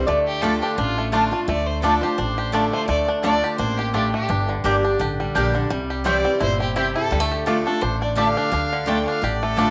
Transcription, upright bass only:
0.07 D2
0.78 A1
1.48 D2
2.18 A1
2.88 D2
3.59 A1
4.30 G1
4.64 G1
5.00 A1
5.35 A#1
5.71 C2
6.41 G1
7.11 D2
7.82 A1
8.52 D2
9.22 A1

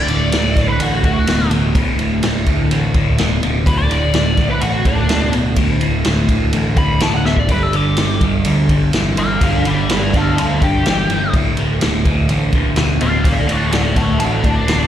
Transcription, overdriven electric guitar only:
0.10 D2 A2
0.34 D2 A2
0.58 D2 A2
0.82 D2 A2
1.05 D2 A2
1.29 D2 B2
1.52 D2 B2
1.76 D2 A2
1.99 D2 A2
2.24 D2 A2
2.47 D2 A2
2.71 D2 A2
2.95 D2 A2
3.18 D2 B2
3.42 D2 B2
3.67 D2 A2
3.89 D2 A2
4.15 D2 A2
4.38 D2 A2
4.62 D2 A2
4.86 D2 A2
5.09 D2 B2
5.34 D2 B2
5.57 D2 A2
5.80 D2 A2
6.05 D2 A2
6.28 D2 A2
6.53 D2 A2
6.76 D2 A2
7.01 D2 B2
7.25 D2 B2
7.49 G2 D3
7.74 G2 D3
7.98 G2 D3
8.23 G2 D3
8.46 G2 D3
8.70 G2 D3
8.95 G2 E3
9.18 G2 E3
9.42 G2 D3
9.66 G2 D3
9.90 G2 D3
10.15 G2 D3
10.38 G2 D3
10.63 G2 D3
10.86 G2 E3
11.11 G2 E3
11.35 D2 A2
11.59 D2 A2
11.82 D2 A2
12.06 D2 A2
12.30 D2 A2
12.54 D2 A2
12.77 D2 B2
13.01 D2 B2
13.23 D2 A2
13.47 D2 A2
13.72 D2 A2
13.96 D2 A2
14.19 D2 A2
14.44 D2 A2
14.67 D2 B2

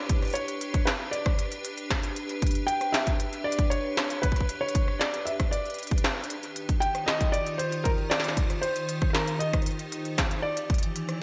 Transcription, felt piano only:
Already playing: D5
0.34 C#5
0.85 B4
1.11 D5
2.67 G5
2.92 E5
3.44 D5
3.70 C#5
4.22 B4
4.61 C#5
4.99 D5
5.25 E5
5.51 D5
6.80 G5
7.06 D#5
7.32 D5
7.58 C5
7.84 A#4
8.10 D5
8.61 C5
9.13 A#4
9.39 D#5
10.42 D5

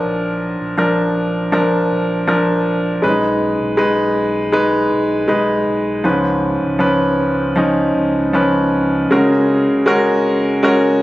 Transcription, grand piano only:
Already playing: F3 D4 A#4
0.77 F3 D4 A#4
1.52 F3 D4 A#4
2.27 F3 D4 A#4
3.02 G#3 C#4 B4
3.09 D#4
3.77 G#3 D#4 B4
4.52 G#3 D#4 B4
5.28 G#3 D#4 B4
6.04 G#2 F3 C#4 B4
6.79 F3 C#4 B4
7.56 F3 C#4 D#4
8.33 F3 C#4 B4
9.11 C#3 G#3 C#4 F#4 A#4
9.86 G#3 C#4 F#4 A#4
10.63 G#3 C#4 F#4 A#4

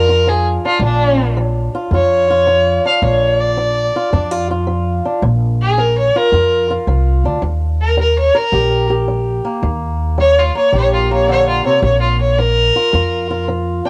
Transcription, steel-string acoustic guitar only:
Already playing: F2 D4
0.09 F4
0.27 F3
0.65 D4
0.82 A#2
1.37 F3
1.75 F4
1.93 F2 F4
2.30 F4
2.47 F3
2.85 D4
3.02 A#2
3.57 F3
3.96 F4
4.13 F2 D4
4.31 F4
4.51 F4
4.67 F3
5.05 D4
5.23 A#2
5.78 F3
6.16 F4
6.33 F2 F4
6.70 F4
6.88 F3
7.25 D4
7.42 D#3
7.97 G3
8.35 A#4
8.52 A#2 G4
8.90 G4
9.08 G3
9.45 A#3
9.63 D#3
10.18 G3
10.55 A#3
10.73 A#2 G4
11.11 A#3
11.28 D3
11.65 C3
11.84 A#2
12.39 F3
12.76 F4
12.93 F2 F4
13.30 F4
13.48 F3
13.85 D4

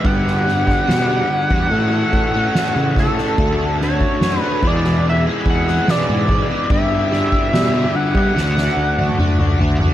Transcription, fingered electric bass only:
0.04 G2
0.89 B2
1.50 E2
1.71 A2
2.13 A2
2.76 C#3
3.38 D2
4.21 F#2
4.62 E2
5.46 E2
6.09 G#2
6.70 G2
7.53 B2
8.15 G3
8.35 D2
8.77 D2
9.38 C#2
9.59 D2
9.79 E2

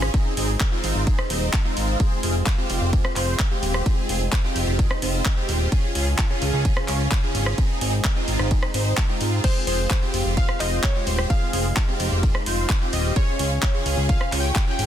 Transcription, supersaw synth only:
Already playing: C#4 F4 G#4
0.14 C4 D#4 G#4
0.37 C4 D#4 G#4
0.72 C4 D#4 F4
1.07 D#4 G#4
1.30 C4 D#4 C5
1.65 C4 D#4 F4
2.00 G#4
2.23 C4 F4 G#4
2.58 C4 F4 G4
2.93 C4 G#4
3.16 C4 F4 C5
3.51 C4 F4 G4
3.86 C4 F4 G#4
4.09 C4 F4 G#4
4.44 C4 F4 G4
4.79 C4 F4 G#4
5.02 C4 F4 C5
5.37 C4 F4 G4
5.72 C#4 F4 G#4
5.95 C#4 F4 G#4
6.30 C#4 F4 G#4
6.65 C#4 G#4
6.88 C#4 F4 C#5
7.23 C#4 F4 G#4
7.58 C4 D#4 G#4
7.81 C4 D#4 G#4
8.16 C4 D#4 F4
8.51 C4 D#4 G#4
8.74 C4 D#4 C5
9.09 C4 D#4 F4
9.44 C4 G#4
9.67 C4 F4 G#4
10.02 C4 F4 G4
10.60 C4 F4 C5
10.95 C4 F4 G4
11.30 C4 F4 G#4
11.53 C4 F4 G#4
11.88 C4 F4 G4
12.23 C4 F4 G#4
12.47 C4 F4 C5
12.81 C4 F4 G4
13.16 C#4 F4 G#4
13.40 C#4 F4 G#4
13.74 C#4 F4 G#4
14.09 C#4 F4 G#4
14.32 C#4 F4 C#5
14.67 C#4 F4 G#4

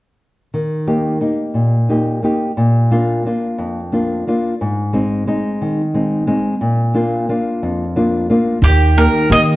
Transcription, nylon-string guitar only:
0.54 D#3
0.87 A#3 D#4 G4
1.21 A#3 D#4 G4
1.54 A#2
1.89 A#3 D#4 G4
2.23 A#3 D#4 G4
2.57 A#2
2.91 A#3 D4 F4
3.25 A#3 D4 F4
3.58 F2
3.92 A#3 D4 F4
4.27 A#3 D4 F4
4.61 G#2
4.93 G#3 C4 D#4
5.27 G#3 C4 D#4
5.61 D#3
5.94 G#3 C4 D#4
6.27 G#3 C4 D#4
6.61 A#2
6.94 A#3 D4 F4
7.29 A#3 D4 F4
7.63 F2
7.96 A#3 D4 F4
8.30 A#3 D4 F4
8.64 D#3
8.97 A#3 D#4 G4
9.29 A#3 D#4 G4

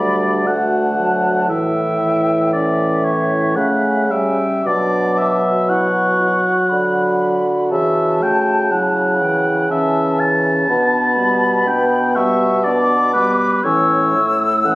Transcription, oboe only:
Already playing: D5
0.47 F#5
1.49 E5
2.53 D5
3.04 C#5
3.56 F#5
4.11 E5
4.66 D5
5.18 E5
5.69 F#5
7.72 E5
8.23 G5
8.72 F#5
9.71 E5
10.20 A5
11.67 G5
12.16 E5
12.64 D5
13.13 B4
13.64 C#5
14.64 F#5

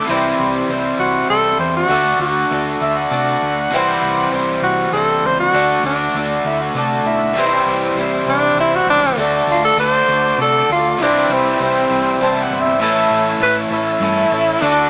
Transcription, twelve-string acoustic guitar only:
0.09 C3 E3 G3 C4 E4 C5
0.70 G3 C4 E4 C5
1.29 G3 C4 E4 C5
1.90 D3 A3 D4 F#4 A4
2.51 A3 D4 F#4 A4
3.11 A3 D4 F#4 A4
3.74 C3 E3 G3 C4 E4 C5
4.32 G3 C4 E4 C5
4.94 G3 C4 E4 C5
5.54 D3 A3 D4 F#4 A4
6.15 A3 D4 F#4 A4
6.75 A3 D4 F#4 A4
7.37 C3 E3 G3 C4 E4 C5
7.97 G3 C4 E4 C5
8.58 G3 C4 E4 C5
9.18 D3 A3 D4 F#4 A4
9.78 A3 D4 F#4 A4
10.09 D4 F#4 A4
10.41 A3 D4 F#4 A4
10.71 D4 A4
11.01 C3 E3 G3 C4 E4 C5
11.60 G3 C4 E4 C5
12.21 G3 C4 E4 C5
12.81 A2 E3 A3 C#4 E4 A4
13.41 A3 C#4 E4 A4
13.71 A3 C#4 E4 A4
14.02 A3 C#4 E4 A4
14.32 A3 C#4 E4 A4
14.62 D3 A3 D4 F#4 A4

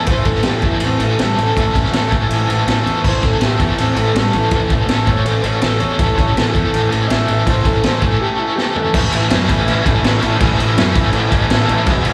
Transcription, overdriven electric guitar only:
Already playing: A3 C#4 A4
0.09 A2 E3 A3 C#4 A4
0.46 A2 E3 A3 C#4 A4
0.65 A3 C#4 A4
1.01 A3 C#4 A4
1.19 E3 A3 C#4 A4
1.58 A2 E3 A3 C#4 A4
1.94 A2 E3 A3 C#4 A4
2.12 A3 C#4 A4
2.50 A3 C#4 A4
2.68 E3 A3 C#4 A4
3.06 A2 E3 A3 C#4 A4
3.42 A2 E3 A3 C#4 A4
3.61 A3 C#4 A4
3.97 A3 C#4 A4
4.16 E3 A3 C#4 A4
4.50 A2 E3 A3 C#4 A4
4.88 A2 E3 A3 C#4 A4
5.06 A3 C#4 A4
5.44 A3 C#4 A4
5.62 E3 A3 C#4 A4
5.98 A2 E3 A3 C#4 A4
6.37 A2 E3 A3 C#4 A4
6.56 A3 C#4 A4
6.91 A3 C#4 A4
7.08 E3 A3 C#4
7.12 A4
7.45 A2 E3 A3 C#4 A4
7.84 A2 E3 A3 C#4 A4
8.02 A3 C#4 A4
8.40 A3 C#4 A4
8.56 E3 A3 C#4 A4
8.93 A2 E3 A3 C#4 E4
9.12 A2 E3 A3 C#4 E4
9.27 A2 E3 A3 C#4 E4
9.47 A2 E3 A3 C#4 E4
9.66 A2 E3 A3 C#4 E4
9.84 A2 E3 A3 C#4 E4
10.03 A2 E3 A3 C#4 E4
10.21 A2 E3 A3 C#4 E4
10.38 A2 E3 A3 C#4 E4
10.58 A2 E3 A3 C#4 E4
10.77 A2 E3 A3 C#4 E4
10.95 A2 E3 A3 C#4 E4
11.15 A2 E3 A3 C#4 E4
11.33 A2 E3 A3 C#4 E4
11.52 A2 E3 A3 C#4 E4
11.70 A2 E3 A3 C#4 E4
11.88 E2 B2 E3 G#3 B3 E4
12.05 E2 B2 E3 G#3 B3 E4

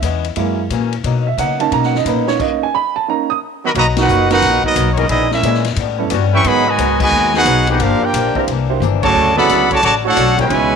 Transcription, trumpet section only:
3.66 F#4 A#4 D#5 B5
3.77 F#4 B4 D#5 A#5
3.99 D#4 A#4 B4 F#5
4.31 D#4 A#4 B4 F#5
4.65 B3 F#4 A#4 D#5
4.93 C#5
4.97 B3 F#4 A#4 D#5
5.09 B3 E4 G#4 D#5
5.30 C#4 G#4 A#4 E5
6.34 B4 E5 G5 C#6
6.46 G#4 D#5 F#5 B5
6.68 F#4 B4 D#5 G#5
7.01 F#4 B4 D#5 G#5
7.36 D#4 G#4 B4 F#5
7.70 D#4 G#4 B4 F#5
7.81 D4 G4 A#4 F5
8.03 F4 A#4 D5 G5
9.02 F#4 C#5 D5 A5
9.37 A4 D5 F#5 B5
9.72 F#4 C#5 D5 A5
9.84 F#4 C#5 D5 A5
10.07 D4 A4 C#5 F#5
10.40 E4 B4 C#5 G#5

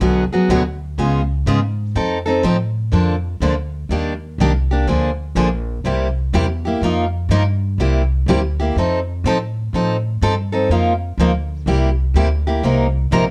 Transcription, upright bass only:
0.00 B1
0.31 muted upright bass stroke
0.49 D2
0.98 C#2
1.46 G#2
1.95 F2
2.44 A2
2.92 F2
3.40 D2
3.89 D#2
4.38 C2
4.87 D2
5.35 A#1
5.84 C2
6.33 E2
6.81 F2
7.29 G2
7.78 C2
8.26 D2
8.76 F2
9.24 A2
9.73 A2
10.21 G2
10.69 F2
11.18 D2
11.66 C2
12.14 D2
12.63 C2
13.11 A#1

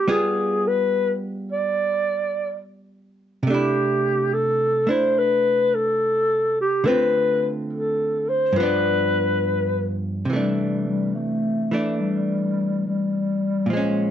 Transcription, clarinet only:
Already playing: G4
0.11 G#4
0.68 B4
1.52 D5
3.49 G4
4.33 A4
4.90 C5
5.18 B4
5.75 A4
6.61 G4
6.86 B4
7.73 A4
8.29 C5
8.57 B4
10.30 G3
10.87 G3
11.15 A3
12.01 G3
12.87 G3
13.71 G#3

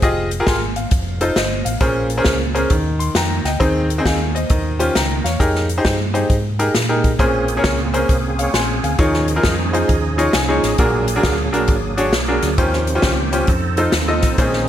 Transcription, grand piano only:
Already playing: C5
0.03 F4 G4 G#4 D#5
0.40 F4 G4 G#4 A#4
0.47 G#5 C6
0.76 F5
1.21 D#4 F4 A4 C5
1.36 C5 D#5
1.65 F5
1.81 A#2 C#4 G#4 A#4 C5
2.18 C#4 G#4 A#4 C5
2.55 C#4 G#4 A#4 C5
2.71 D#3
2.99 C6
3.16 G5 A#5
3.45 D#5 G5
3.60 D#3 C4 D#4 G#4 C5
3.98 C4 D#4 G#4 C5
4.06 F5 G#5
4.35 C5 D#5
4.50 D#3
4.79 C#4 F4 G4 C5
4.95 G5 A#5
5.24 C#5 F5
5.40 D#4 G4 G#4 A#4
5.78 D#4 G4 G#4 C5
6.14 D#4 G4 G#4 C5
6.59 D#4 G4 G#4 A#4
6.89 D#4 G4 G#4 A#4
7.19 A#2 C#4 G#4 A#4 C5
7.57 C#4 G#4 A#4 C#5
7.94 C#4 G#4 A#4 C5
8.39 C#5 F5
8.54 G#5 C6
8.84 F5 G#5
8.99 D#3 D#4 F4 G#4 C#5
9.36 D#4 F4 G#4 A#4
9.73 D#4 F4 G#4 C5
10.18 D#4 F4 G#4 C#5 D#5
10.34 G#5
10.49 D#4 F4 G#4 C#5
10.79 A#2 D4 F#4 G#4 A#4
11.16 D4 F#4 G#4 A#4
11.53 D4 F#4 G#4 A#4
11.97 D4 F#4 G#4 C#5
12.28 D4 F#4 G#4 A#4
12.58 D#3 C#4 F4 G4 C5
12.95 C#4 F4 G4 C5
13.32 C#4 F4 G4 C5
13.78 D#4 F4 A4 C5
14.08 D#4 F4 A4 D#5
14.38 A#2 C#4 D#4 G#4 C5

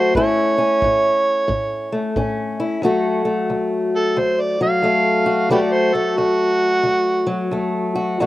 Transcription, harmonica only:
Already playing: C5
0.16 C#5
3.96 A4
4.19 C5
4.41 D5
4.63 F5
5.51 G4 B4 D5
5.73 C5
5.94 A4
6.17 F#4

